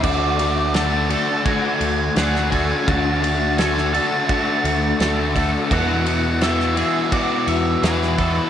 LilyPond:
<<
  \new Staff \with { instrumentName = "Lead electric guitar" } { \time 4/4 \key d \lydian \tempo 4 = 85 d''4 a''4 gis''4 fis''8 gis''8 | a''8 a''8 gis''8 a''2 r8 | fis''4 e''8 e''8 d''8 e''8 b'4 | }
  \new Staff \with { instrumentName = "Clean electric guitar" } { \time 4/4 \key d \lydian fis'4 a'8 a'8 fis'4 gis'8 a'8 | fis'4 a'8 a'8 fis'4 a'8 a'8 | fis'4 a'8 gis'8 fis'4 gis'8 a'8 | }
  \new Staff \with { instrumentName = "Overdriven electric guitar" } { \time 4/4 \key d \lydian <d a d' fis'>8 <a d' fis'>8 <d a d' fis'>8 <a d' fis'>4. <d a d' fis'>8 <a d' fis'>8 | <d a d' fis'>8 <a d' fis'>8 <d a d' fis'>8 <a d' fis'>4. <d a d' fis'>8 <a d' fis'>8 | <e, b, e b e' fis'>8 <e b e' fis'>8 <e b e' fis'>8 <e b e' fis'>4. <e b e' fis'>8 <e b e' fis'>8 | }
  \new Staff \with { instrumentName = "Picked electric bass" } { \clef bass \time 4/4 \key d \lydian d,2 r8 d,8 d,4 | d,2 r8 d,8 d,4 | e,2 r8 e,8 e,4 | }
  \new DrumStaff \with { instrumentName = "Drums" } \drummode { \time 4/4 <cymc bd>8 cymr8 <cymr sn>8 cymr8 <bd cymr>8 cymr8 <cymr sn>16 sn16 <bd cymr>8 | <bd cymr>8 cymr8 <cymr sn>16 sn16 cymr8 <bd cymr>8 cymr8 <cymr sn>8 <bd cymr>8 | <bd cymr>8 cymr8 <cymr sn>16 sn16 cymr8 <bd cymr>8 cymr8 <cymr sn>16 sn16 <bd cymr>8 | }
>>